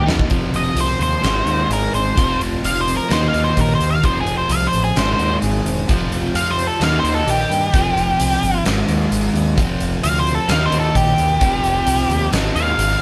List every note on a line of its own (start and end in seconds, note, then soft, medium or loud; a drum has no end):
0.06 0.23 E2 medium
0.06 0.30 D#3 medium
0.06 0.30 A#3 medium
0.06 0.29 D#4 medium
0.06 snare loud
0.19 kick medium
0.29 0.48 F1 medium
0.29 1.21 F2 medium
0.29 1.23 C3 medium
0.29 0.76 F3 medium
0.29 1.23 F3 medium
0.29 kick loud
0.29 closed hi-hat medium
0.52 0.70 F1 medium
0.52 0.78 D#5 medium
0.52 closed hi-hat medium
0.75 0.93 C2 medium
0.75 1.23 F3 medium
0.75 closed hi-hat medium
0.80 1.02 C5 medium
0.99 1.17 D#2 medium
0.99 1.24 C4 medium
0.99 1.69 C5 medium
0.99 closed hi-hat medium
1.21 1.41 G#1 medium
1.21 2.14 G#2 loud
1.21 2.15 D#3 loud
1.21 2.16 G#3 medium
1.21 2.16 G#3 loud
1.21 snare loud
1.21 closed hi-hat medium
1.46 1.64 D#2 medium
1.46 2.17 D#4 medium
1.46 closed hi-hat medium
1.69 1.87 G#1 medium
1.69 2.17 G#4 medium
1.69 1.94 A#4 medium
1.69 closed hi-hat medium
1.93 2.10 G#1 medium
1.93 2.17 C4 medium
1.93 2.40 C5 medium
1.93 closed hi-hat medium
2.15 2.35 F1 loud
2.15 3.08 F2 medium
2.15 3.08 C3 medium
2.15 2.62 F3 medium
2.15 3.09 F3 medium
2.15 kick loud
2.15 closed hi-hat medium
2.39 2.57 F1 medium
2.39 closed hi-hat medium
2.63 2.98 F1 medium
2.63 3.10 F3 medium
2.63 2.80 F5 medium
2.63 closed hi-hat loud
2.81 2.95 C5 medium
2.87 3.10 C4 medium
2.87 closed hi-hat medium
2.97 3.11 A#4 medium
3.09 3.28 D#2 medium
3.09 4.01 D#3 medium
3.09 4.03 D#3 medium
3.09 4.02 A#3 medium
3.09 4.03 D#4 loud
3.09 snare medium
3.09 closed hi-hat medium
3.13 3.27 C5 medium
3.28 3.42 F5 medium
3.34 3.51 D#2 medium
3.34 4.03 D#4 medium
3.34 closed hi-hat medium
3.44 3.58 C5 medium
3.57 3.74 A#1 medium
3.57 4.03 G4 medium
3.57 3.74 A#4 medium
3.57 kick medium
3.57 closed hi-hat loud
3.75 3.89 C5 medium
3.80 3.97 D#2 medium
3.80 4.03 A#3 medium
3.80 closed hi-hat medium
3.90 4.04 F5 medium
4.02 4.21 F1 loud
4.02 4.94 F2 medium
4.02 4.95 C3 medium
4.02 4.48 F3 medium
4.02 4.96 F3 loud
4.02 4.19 C5 loud
4.02 kick loud
4.02 closed hi-hat medium
4.21 4.35 G#4 medium
4.26 4.43 F1 medium
4.26 closed hi-hat medium
4.37 4.51 C5 medium
4.49 4.66 C2 loud
4.49 4.95 F3 medium
4.49 4.66 F5 loud
4.49 closed hi-hat loud
4.67 4.81 C5 medium
4.72 4.90 A1 medium
4.72 4.96 C4 medium
4.72 closed hi-hat medium
4.84 4.97 G#4 medium
4.96 5.13 G#1 medium
4.96 5.88 G#2 medium
4.96 5.87 G#2 medium
4.96 5.88 D#3 loud
4.96 5.89 G#3 loud
4.96 5.12 C5 loud
4.96 snare loud
4.96 closed hi-hat medium
5.14 5.35 C5 medium
5.19 5.36 D#2 medium
5.19 5.88 D#4 medium
5.19 closed hi-hat medium
5.42 5.59 G#1 medium
5.42 5.88 G#4 medium
5.42 closed hi-hat medium
5.65 5.82 E1 medium
5.65 5.89 C4 medium
5.65 closed hi-hat medium
5.88 6.06 F1 medium
5.88 6.79 F2 medium
5.88 6.79 C3 medium
5.88 6.34 F3 medium
5.88 6.81 F3 loud
5.88 kick loud
5.88 closed hi-hat medium
6.10 6.28 F1 medium
6.10 snare soft
6.10 closed hi-hat medium
6.34 6.69 F2 medium
6.34 6.81 F3 medium
6.34 6.50 F5 loud
6.34 closed hi-hat medium
6.50 6.67 C5 medium
6.58 6.81 C4 medium
6.58 closed hi-hat medium
6.67 6.81 A4 medium
6.80 6.98 D#2 medium
6.80 7.71 D#3 medium
6.80 7.73 D#3 medium
6.80 7.72 A#3 loud
6.80 7.72 D#4 medium
6.80 6.97 F5 loud
6.80 snare medium
6.80 closed hi-hat medium
7.00 7.73 D#4 medium
7.00 7.14 C5 medium
7.04 7.21 D#2 medium
7.04 closed hi-hat medium
7.14 7.28 A4 medium
7.26 7.43 A#1 medium
7.26 7.73 G4 medium
7.26 8.63 G4 loud
7.26 closed hi-hat medium
7.50 7.67 G2 medium
7.50 7.73 A#3 medium
7.50 closed hi-hat medium
7.73 7.90 F1 medium
7.73 8.63 F2 medium
7.73 8.64 C3 medium
7.73 8.65 F3 loud
7.73 kick loud
7.73 closed hi-hat medium
7.96 8.13 F1 medium
7.96 closed hi-hat medium
8.19 8.36 C2 medium
8.19 closed hi-hat loud
8.42 8.59 G1 medium
8.42 closed hi-hat medium
8.65 8.82 G#1 medium
8.65 9.55 G#2 medium
8.65 9.56 D#3 medium
8.65 9.57 G#3 loud
8.65 snare loud
8.65 closed hi-hat medium
8.88 9.05 D#2 medium
8.88 closed hi-hat medium
9.11 9.28 G#1 medium
9.11 closed hi-hat medium
9.34 9.59 D#2 medium
9.34 closed hi-hat medium
9.56 9.74 F1 medium
9.56 10.47 F2 medium
9.56 10.48 C3 loud
9.56 10.48 F3 loud
9.56 kick loud
9.56 closed hi-hat medium
9.80 9.97 F1 medium
9.80 closed hi-hat medium
10.04 10.37 D2 loud
10.04 10.18 F5 loud
10.04 closed hi-hat loud
10.20 10.35 C5 medium
10.27 closed hi-hat medium
10.35 10.49 A4 medium
10.48 10.66 D#2 medium
10.48 11.39 D#3 loud
10.48 11.40 A#3 medium
10.48 11.40 D#4 loud
10.48 10.64 F5 loud
10.48 snare loud
10.48 closed hi-hat medium
10.66 10.79 C5 medium
10.72 10.89 D#2 medium
10.72 closed hi-hat medium
10.80 10.96 A4 medium
10.95 11.12 A#1 medium
10.95 12.29 G4 loud
10.95 kick medium
10.95 closed hi-hat loud
11.18 11.35 D#2 medium
11.18 closed hi-hat medium
11.39 11.58 F1 medium
11.39 12.30 F2 medium
11.39 12.31 C3 loud
11.39 12.32 F3 loud
11.39 kick loud
11.39 closed hi-hat loud
11.64 11.81 F1 medium
11.64 closed hi-hat medium
11.86 12.03 C2 loud
11.86 closed hi-hat loud
12.09 12.26 D#2 medium
12.09 closed hi-hat medium
12.31 12.49 G#1 medium
12.31 13.02 G#2 medium
12.31 13.02 D#3 loud
12.31 13.02 G#3 loud
12.31 snare loud
12.31 closed hi-hat medium
12.55 12.72 D#2 medium
12.55 13.00 F5 loud
12.55 closed hi-hat medium
12.78 12.95 G#1 medium
12.78 closed hi-hat loud